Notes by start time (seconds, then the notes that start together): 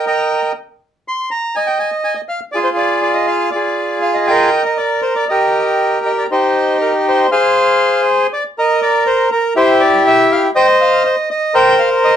Already playing: A#4
0.07 D#5 G5 A#5
1.08 C6
1.31 A#5
1.55 D#5 G#5
1.67 G5
1.79 G#5
2.04 G#5
2.15 D#5
2.29 F5
2.52 F4 G#4 D5
2.64 C5
2.77 D5
3.02 D5
3.14 D#5
3.27 F5
3.51 F4 D5
3.55 G#4
4.02 F5
4.14 D#5
4.27 A#4 D#5 G5
4.66 D#5
4.77 D5
5.02 C5
5.16 D5
5.29 G4 A#4 D#5
6.06 D#5
6.18 D5
6.31 D#4 G4 C5
6.81 A#4
7.08 C5
7.32 G#4 C5 F5
8.33 D5
8.58 A#4 D#5
8.82 D5
9.07 C5
9.32 A#4
9.56 E4 G4 C5
9.80 D5
10.07 E5
10.32 F5
10.55 C5 D#5 G5
10.81 F5
11.05 C5
11.31 D#5
11.54 A#4 C5 G5
11.79 F5
12.04 D#5